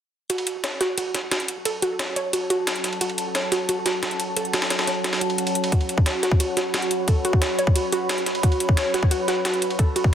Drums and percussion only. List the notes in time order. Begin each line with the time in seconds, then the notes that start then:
0.30 closed hi-hat, ride
0.38 ride
0.47 closed hi-hat, ride
0.64 snare, closed hi-hat, ride
0.81 snare, closed hi-hat, ride
0.98 closed hi-hat, ride
1.15 snare, closed hi-hat, ride
1.31 snare, closed hi-hat, ride
1.40 closed hi-hat
1.48 closed hi-hat, ride
1.65 closed hi-hat, ride
1.82 closed hi-hat, ride
1.99 snare, closed hi-hat, ride
2.16 closed hi-hat, ride
2.33 closed hi-hat, ride
2.50 closed hi-hat, ride
2.67 snare, closed hi-hat, ride
2.76 closed hi-hat
2.84 snare, closed hi-hat, ride
2.93 ride
3.01 closed hi-hat, ride
3.10 ride
3.18 closed hi-hat, ride
3.35 snare, closed hi-hat, ride
3.52 snare, closed hi-hat, ride
3.69 closed hi-hat, ride
3.86 snare, closed hi-hat, ride
4.03 snare, closed hi-hat, ride
4.11 closed hi-hat
4.20 closed hi-hat, ride
4.37 closed hi-hat, ride
4.45 closed hi-hat
4.53 snare, closed hi-hat, ride
4.62 snare, ride
4.70 snare, closed hi-hat, ride
4.79 snare, ride
4.87 snare, closed hi-hat, ride
5.04 snare, closed hi-hat, ride
5.13 snare, ride
5.21 closed hi-hat, ride
5.30 ride
5.38 closed hi-hat, ride
5.47 closed hi-hat, ride
5.55 closed hi-hat, ride
5.64 ride
5.72 kick, closed hi-hat, ride
5.81 ride
5.89 closed hi-hat, ride
5.98 kick
6.06 snare, closed hi-hat, ride
6.23 snare, closed hi-hat, ride
6.32 kick
6.40 closed hi-hat, ride
6.57 snare, closed hi-hat, ride
6.74 snare, closed hi-hat, ride
6.82 closed hi-hat
6.91 closed hi-hat, ride
7.08 kick, closed hi-hat, ride
7.25 closed hi-hat, ride
7.33 kick
7.42 snare, closed hi-hat, ride
7.59 closed hi-hat, ride
7.67 kick
7.76 closed hi-hat, ride
7.92 closed hi-hat, ride
8.09 snare, closed hi-hat, ride
8.18 closed hi-hat
8.26 snare, closed hi-hat, ride
8.35 ride
8.43 kick, closed hi-hat, ride
8.52 ride
8.60 closed hi-hat, ride
8.69 kick
8.77 snare, closed hi-hat, ride
8.94 snare, closed hi-hat, ride
9.03 kick
9.11 closed hi-hat, ride
9.28 snare, closed hi-hat, ride
9.45 snare, closed hi-hat, ride
9.54 closed hi-hat
9.62 closed hi-hat, ride
9.70 ride
9.79 kick, closed hi-hat, ride
9.96 closed hi-hat, ride
10.04 kick